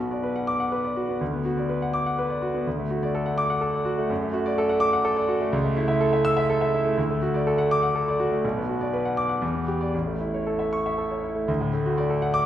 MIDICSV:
0, 0, Header, 1, 2, 480
1, 0, Start_track
1, 0, Tempo, 481928
1, 1204, Time_signature, 3, 2, 24, 8
1, 7908, Tempo, 493421
1, 9348, Tempo, 515464
1, 11268, Tempo, 490597
1, 12224, End_track
2, 0, Start_track
2, 0, Title_t, "Grand piano"
2, 0, Program_c, 0, 0
2, 0, Control_c, 0, 64, 127
2, 0, Note_on_c, 0, 35, 61
2, 0, Note_on_c, 0, 59, 50
2, 0, Note_on_c, 0, 66, 50
2, 111, Note_on_c, 0, 74, 54
2, 183, Note_off_c, 0, 66, 0
2, 233, Note_on_c, 0, 71, 58
2, 305, Note_off_c, 0, 74, 0
2, 355, Note_on_c, 0, 78, 62
2, 427, Note_off_c, 0, 71, 0
2, 471, Note_on_c, 0, 86, 81
2, 549, Note_off_c, 0, 78, 0
2, 597, Note_on_c, 0, 78, 64
2, 668, Note_off_c, 0, 86, 0
2, 715, Note_on_c, 0, 71, 62
2, 791, Note_off_c, 0, 78, 0
2, 841, Note_on_c, 0, 74, 53
2, 911, Note_off_c, 0, 71, 0
2, 962, Note_on_c, 0, 66, 61
2, 1035, Note_off_c, 0, 74, 0
2, 1085, Note_off_c, 0, 59, 0
2, 1085, Note_on_c, 0, 59, 50
2, 1156, Note_off_c, 0, 66, 0
2, 1165, Note_off_c, 0, 35, 0
2, 1204, Note_on_c, 0, 38, 65
2, 1205, Note_off_c, 0, 59, 0
2, 1220, Control_c, 0, 64, 0
2, 1329, Note_on_c, 0, 59, 52
2, 1399, Control_c, 0, 64, 127
2, 1447, Note_on_c, 0, 66, 58
2, 1520, Note_off_c, 0, 59, 0
2, 1568, Note_on_c, 0, 74, 55
2, 1640, Note_off_c, 0, 66, 0
2, 1687, Note_on_c, 0, 71, 59
2, 1760, Note_off_c, 0, 74, 0
2, 1815, Note_on_c, 0, 78, 59
2, 1880, Note_off_c, 0, 71, 0
2, 1927, Note_on_c, 0, 86, 80
2, 2004, Note_off_c, 0, 78, 0
2, 2055, Note_on_c, 0, 78, 67
2, 2119, Note_off_c, 0, 86, 0
2, 2177, Note_on_c, 0, 71, 70
2, 2243, Note_off_c, 0, 78, 0
2, 2287, Note_on_c, 0, 74, 64
2, 2364, Note_off_c, 0, 71, 0
2, 2412, Note_on_c, 0, 66, 60
2, 2480, Note_off_c, 0, 74, 0
2, 2533, Note_on_c, 0, 59, 57
2, 2603, Note_off_c, 0, 66, 0
2, 2610, Note_off_c, 0, 38, 0
2, 2651, Note_off_c, 0, 59, 0
2, 2657, Note_on_c, 0, 38, 66
2, 2667, Control_c, 0, 64, 0
2, 2777, Note_on_c, 0, 57, 58
2, 2816, Control_c, 0, 64, 127
2, 2894, Note_on_c, 0, 66, 61
2, 2965, Note_off_c, 0, 57, 0
2, 3017, Note_on_c, 0, 74, 65
2, 3082, Note_off_c, 0, 66, 0
2, 3133, Note_on_c, 0, 69, 71
2, 3203, Note_off_c, 0, 74, 0
2, 3245, Note_on_c, 0, 78, 68
2, 3321, Note_off_c, 0, 69, 0
2, 3363, Note_on_c, 0, 86, 93
2, 3437, Note_off_c, 0, 78, 0
2, 3484, Note_on_c, 0, 78, 70
2, 3556, Note_off_c, 0, 86, 0
2, 3597, Note_on_c, 0, 69, 67
2, 3677, Note_off_c, 0, 78, 0
2, 3722, Note_on_c, 0, 74, 60
2, 3793, Note_off_c, 0, 69, 0
2, 3836, Note_on_c, 0, 66, 73
2, 3916, Note_off_c, 0, 74, 0
2, 3967, Note_on_c, 0, 57, 65
2, 4032, Note_off_c, 0, 66, 0
2, 4049, Note_off_c, 0, 38, 0
2, 4083, Note_on_c, 0, 42, 75
2, 4086, Note_off_c, 0, 57, 0
2, 4103, Control_c, 0, 64, 0
2, 4196, Note_on_c, 0, 57, 64
2, 4250, Control_c, 0, 64, 127
2, 4318, Note_on_c, 0, 66, 67
2, 4390, Note_off_c, 0, 57, 0
2, 4438, Note_on_c, 0, 74, 74
2, 4509, Note_off_c, 0, 66, 0
2, 4562, Note_on_c, 0, 69, 81
2, 4628, Note_off_c, 0, 74, 0
2, 4674, Note_on_c, 0, 78, 76
2, 4749, Note_off_c, 0, 69, 0
2, 4782, Note_on_c, 0, 86, 103
2, 4863, Note_off_c, 0, 78, 0
2, 4911, Note_on_c, 0, 78, 70
2, 4977, Note_off_c, 0, 86, 0
2, 5026, Note_on_c, 0, 69, 83
2, 5101, Note_off_c, 0, 78, 0
2, 5145, Note_on_c, 0, 74, 72
2, 5219, Note_off_c, 0, 69, 0
2, 5261, Note_on_c, 0, 66, 71
2, 5338, Note_off_c, 0, 74, 0
2, 5385, Note_on_c, 0, 57, 67
2, 5456, Note_off_c, 0, 66, 0
2, 5466, Note_off_c, 0, 42, 0
2, 5503, Note_on_c, 0, 37, 92
2, 5506, Note_off_c, 0, 57, 0
2, 5525, Control_c, 0, 64, 0
2, 5619, Note_on_c, 0, 57, 72
2, 5695, Control_c, 0, 64, 127
2, 5742, Note_on_c, 0, 64, 77
2, 5813, Note_off_c, 0, 57, 0
2, 5855, Note_on_c, 0, 76, 72
2, 5935, Note_off_c, 0, 64, 0
2, 5981, Note_on_c, 0, 69, 75
2, 6051, Note_off_c, 0, 76, 0
2, 6103, Note_on_c, 0, 76, 78
2, 6174, Note_off_c, 0, 69, 0
2, 6222, Note_on_c, 0, 88, 110
2, 6296, Note_off_c, 0, 76, 0
2, 6341, Note_on_c, 0, 76, 84
2, 6415, Note_off_c, 0, 88, 0
2, 6470, Note_on_c, 0, 69, 84
2, 6535, Note_off_c, 0, 76, 0
2, 6585, Note_on_c, 0, 76, 68
2, 6660, Note_off_c, 0, 69, 0
2, 6717, Note_on_c, 0, 64, 79
2, 6778, Note_off_c, 0, 76, 0
2, 6829, Note_on_c, 0, 57, 65
2, 6905, Note_off_c, 0, 37, 0
2, 6905, Note_off_c, 0, 64, 0
2, 6948, Note_off_c, 0, 57, 0
2, 6948, Note_on_c, 0, 38, 77
2, 6963, Control_c, 0, 64, 0
2, 7077, Note_on_c, 0, 57, 65
2, 7150, Control_c, 0, 64, 127
2, 7194, Note_on_c, 0, 66, 70
2, 7265, Note_off_c, 0, 57, 0
2, 7312, Note_on_c, 0, 74, 67
2, 7383, Note_off_c, 0, 66, 0
2, 7438, Note_on_c, 0, 69, 73
2, 7503, Note_off_c, 0, 74, 0
2, 7552, Note_on_c, 0, 78, 75
2, 7626, Note_off_c, 0, 69, 0
2, 7682, Note_on_c, 0, 86, 101
2, 7743, Note_off_c, 0, 78, 0
2, 7796, Note_on_c, 0, 78, 73
2, 7869, Note_off_c, 0, 86, 0
2, 7920, Note_on_c, 0, 69, 71
2, 7986, Note_off_c, 0, 78, 0
2, 8047, Note_on_c, 0, 74, 62
2, 8106, Note_off_c, 0, 69, 0
2, 8159, Note_on_c, 0, 66, 69
2, 8230, Note_off_c, 0, 74, 0
2, 8276, Note_on_c, 0, 57, 65
2, 8346, Note_off_c, 0, 66, 0
2, 8350, Note_off_c, 0, 38, 0
2, 8393, Note_off_c, 0, 57, 0
2, 8399, Note_on_c, 0, 35, 78
2, 8409, Control_c, 0, 64, 0
2, 8523, Note_on_c, 0, 59, 61
2, 8552, Control_c, 0, 64, 127
2, 8637, Note_on_c, 0, 66, 60
2, 8707, Note_off_c, 0, 59, 0
2, 8753, Note_on_c, 0, 74, 64
2, 8824, Note_off_c, 0, 66, 0
2, 8876, Note_on_c, 0, 71, 64
2, 8942, Note_off_c, 0, 74, 0
2, 8991, Note_on_c, 0, 78, 65
2, 9064, Note_off_c, 0, 71, 0
2, 9107, Note_on_c, 0, 86, 83
2, 9182, Note_off_c, 0, 78, 0
2, 9222, Note_on_c, 0, 78, 56
2, 9301, Note_off_c, 0, 86, 0
2, 9327, Note_off_c, 0, 35, 0
2, 9346, Note_on_c, 0, 40, 75
2, 9347, Note_off_c, 0, 78, 0
2, 9366, Control_c, 0, 64, 0
2, 9467, Note_on_c, 0, 59, 51
2, 9539, Control_c, 0, 64, 127
2, 9590, Note_on_c, 0, 67, 60
2, 9658, Note_off_c, 0, 59, 0
2, 9710, Note_on_c, 0, 74, 68
2, 9781, Note_off_c, 0, 67, 0
2, 9811, Note_off_c, 0, 40, 0
2, 9829, Note_off_c, 0, 74, 0
2, 9833, Note_on_c, 0, 33, 63
2, 9845, Control_c, 0, 64, 0
2, 9954, Note_on_c, 0, 57, 45
2, 10009, Control_c, 0, 64, 127
2, 10079, Note_on_c, 0, 64, 50
2, 10146, Note_off_c, 0, 57, 0
2, 10207, Note_on_c, 0, 73, 54
2, 10269, Note_off_c, 0, 64, 0
2, 10322, Note_on_c, 0, 69, 58
2, 10393, Note_off_c, 0, 73, 0
2, 10437, Note_on_c, 0, 76, 57
2, 10512, Note_off_c, 0, 69, 0
2, 10564, Note_on_c, 0, 85, 82
2, 10629, Note_off_c, 0, 76, 0
2, 10688, Note_on_c, 0, 76, 61
2, 10753, Note_off_c, 0, 85, 0
2, 10799, Note_on_c, 0, 69, 56
2, 10874, Note_off_c, 0, 76, 0
2, 10921, Note_on_c, 0, 73, 49
2, 10989, Note_off_c, 0, 69, 0
2, 11036, Note_on_c, 0, 64, 53
2, 11110, Note_off_c, 0, 73, 0
2, 11148, Note_on_c, 0, 57, 46
2, 11224, Note_off_c, 0, 64, 0
2, 11235, Note_off_c, 0, 33, 0
2, 11267, Note_off_c, 0, 57, 0
2, 11267, Note_on_c, 0, 38, 82
2, 11288, Control_c, 0, 64, 0
2, 11391, Note_on_c, 0, 45, 66
2, 11479, Control_c, 0, 64, 127
2, 11517, Note_on_c, 0, 57, 61
2, 11583, Note_off_c, 0, 45, 0
2, 11636, Note_on_c, 0, 66, 57
2, 11706, Note_off_c, 0, 57, 0
2, 11752, Note_on_c, 0, 74, 71
2, 11825, Note_off_c, 0, 66, 0
2, 11873, Note_on_c, 0, 69, 64
2, 11943, Note_off_c, 0, 74, 0
2, 11990, Note_on_c, 0, 78, 75
2, 12064, Note_off_c, 0, 69, 0
2, 12105, Note_on_c, 0, 86, 103
2, 12182, Note_off_c, 0, 78, 0
2, 12224, Note_off_c, 0, 38, 0
2, 12224, Note_off_c, 0, 86, 0
2, 12224, End_track
0, 0, End_of_file